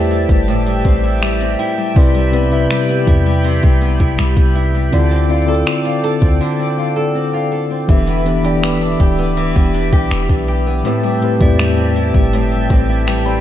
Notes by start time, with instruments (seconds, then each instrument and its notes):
Already playing: 808-style bass E2, nylon-string guitar A2 G3 C4 E4 G4, tine electric piano A3 E4 G4 B4 C5 D5, analog synth pad G4 E5 G5 A5
0.11 nylon-string guitar E4, closed hi-hat
0.29 808-style bass G1, nylon-string guitar G3, kick, closed hi-hat
0.48 nylon-string guitar A2, closed hi-hat
0.66 nylon-string guitar G3, closed hi-hat
0.85 808-style bass A1, nylon-string guitar C4, tine electric piano D5, kick, closed hi-hat
1.04 nylon-string guitar E4
1.22 nylon-string guitar G3, tine electric piano E5, finger snap, closed hi-hat
1.41 nylon-string guitar C4, closed hi-hat
1.59 nylon-string guitar E4, tine electric piano G5, closed hi-hat
1.78 nylon-string guitar G3
1.95 808-style bass C2, tine electric piano C3 C4 E4 B4 D5, nylon-string guitar C3, analog synth pad G4 B5, kick, closed hi-hat
2.15 nylon-string guitar G3, closed hi-hat
2.32 tine electric piano C3 C4 E4 B4 D5, nylon-string guitar B3, closed hi-hat
2.50 tine electric piano C3 C4 E4 B4 E5, nylon-string guitar E4, closed hi-hat
2.70 nylon-string guitar G3, finger snap, closed hi-hat
2.89 nylon-string guitar B3, closed hi-hat
3.07 808-style bass E2, nylon-string guitar E4, kick, closed hi-hat
3.26 nylon-string guitar G3, closed hi-hat
3.44 nylon-string guitar C3, closed hi-hat
3.63 808-style bass C2, nylon-string guitar G3, kick, closed hi-hat
3.81 nylon-string guitar B3, closed hi-hat
4.00 808-style bass B1, nylon-string guitar E4, kick
4.18 808-style bass C2, nylon-string guitar G3, finger snap, closed hi-hat
4.37 808-style bass C2, nylon-string guitar B3, kick, closed hi-hat
4.56 nylon-string guitar E4, closed hi-hat
4.74 nylon-string guitar G3
4.91 808-style bass D2, tine electric piano D3 C4 E4 F4 D5, nylon-string guitar D3, analog synth pad A4 D5 D6, closed hi-hat
5.11 nylon-string guitar C4, closed hi-hat
5.28 tine electric piano D3 C4 E4 F4 D5, nylon-string guitar F4, closed hi-hat
5.42 closed hi-hat
5.47 tine electric piano D3 C4 E4 F4 D5, nylon-string guitar A4
5.54 closed hi-hat
5.66 nylon-string guitar C4, finger snap, closed hi-hat
5.85 nylon-string guitar F4, closed hi-hat
6.04 nylon-string guitar A4, closed hi-hat
6.22 808-style bass D2, nylon-string guitar C4, kick, closed hi-hat
6.41 nylon-string guitar D3
6.59 nylon-string guitar C4
6.78 nylon-string guitar F4
6.96 nylon-string guitar A4
7.15 nylon-string guitar C4
7.33 nylon-string guitar F4
7.52 nylon-string guitar A4
7.70 nylon-string guitar C4
7.88 808-style bass E1, tine electric piano E3 B3 D4 G4 E5, nylon-string guitar E3, analog synth pad G4 E5 B5 D6, kick, closed hi-hat
8.07 nylon-string guitar B3, closed hi-hat
8.25 tine electric piano E3 B3 D4 G4 B4, nylon-string guitar D4, closed hi-hat
8.43 tine electric piano E3 B3 D4 G4 D5, nylon-string guitar G4, closed hi-hat
8.63 nylon-string guitar B3, finger snap, closed hi-hat
8.82 nylon-string guitar D4, closed hi-hat
9.00 808-style bass D1, nylon-string guitar G4, kick, closed hi-hat
9.18 nylon-string guitar B3, closed hi-hat
9.37 nylon-string guitar E3, closed hi-hat
9.56 808-style bass E1, nylon-string guitar B3, kick, closed hi-hat
9.74 nylon-string guitar D4, closed hi-hat
9.93 808-style bass B1, nylon-string guitar G4, kick
10.11 808-style bass E1, nylon-string guitar B3, finger snap, closed hi-hat
10.29 808-style bass B1, nylon-string guitar D4, kick, closed hi-hat
10.48 nylon-string guitar G4, closed hi-hat
10.67 nylon-string guitar B3
10.84 tine electric piano A2 A3 C4 G4 B4, nylon-string guitar A2, analog synth pad G4 E5 G5 A5, closed hi-hat
11.03 nylon-string guitar G3, closed hi-hat
11.21 tine electric piano A2 A3 C4 G4 B4, nylon-string guitar C4, closed hi-hat
11.39 808-style bass E2, tine electric piano A2 A3 C4 G4 D5, nylon-string guitar E4, kick, closed hi-hat
11.59 nylon-string guitar G3, finger snap, closed hi-hat
11.78 nylon-string guitar C4, closed hi-hat
11.96 nylon-string guitar E4, closed hi-hat
12.14 808-style bass G1, nylon-string guitar G3, kick, closed hi-hat
12.33 nylon-string guitar A2, closed hi-hat
12.52 nylon-string guitar G3, closed hi-hat
12.70 808-style bass A1, nylon-string guitar C4, kick, closed hi-hat
12.89 nylon-string guitar E4
13.07 nylon-string guitar G3, tine electric piano B4 G5, finger snap, closed hi-hat
13.26 nylon-string guitar C4, tine electric piano D5 B5, closed hi-hat